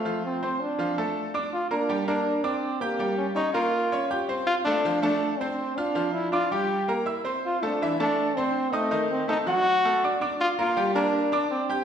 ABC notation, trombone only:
X:1
M:4/4
L:1/16
Q:1/4=162
K:Gdor
V:1 name="Trombone"
A,2 C4 D8 z2 | F2 D4 D4 C4 B,2- | B,2 _D2 _E2 F8 z2 | F2 D4 D4 C4 D2- |
D2 E2 F2 G4- G z4 z | F2 D4 D4 C4 A,2- | A,2 ^B,2 ^D2 ^F8 z2 | F2 F4 D6 C4 |]